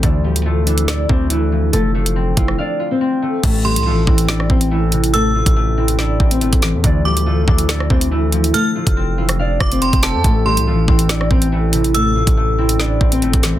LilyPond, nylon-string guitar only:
\new Staff \with { instrumentName = "Nylon-string guitar" } { \time 4/4 \key a \minor \tempo 4 = 141 <d' d''>8 <g g'>8 <f f'>8 <e e'>8 <d' d''>8 <c' c''>8 <e e'>4 | <a a'>8 <f f'>4 <e e'>8 <d' d''>8. <c' c''>4~ <c' c''>16 | <a a'>8 <g g'>8 <f f'>8 <e e'>8 <d' d''>8 <c' c''>8 <e e'>4 | <a a'>8 <f f'>4 <e e'>8 <d' d''>8. <c' c''>4~ <c' c''>16 |
<d' d''>8 <g g'>8 <f f'>8 <e e'>8 <d' d''>8 <c' c''>8 <e e'>4 | <a a'>8 <f f'>4 <e e'>8 <d' d''>8. <c' c''>4~ <c' c''>16 | <a a'>8 <g g'>8 <f f'>8 <e e'>8 <d' d''>8 <c' c''>8 <e e'>4 | <a a'>8 <f f'>4 <e e'>8 <d' d''>8. <c' c''>4~ <c' c''>16 | }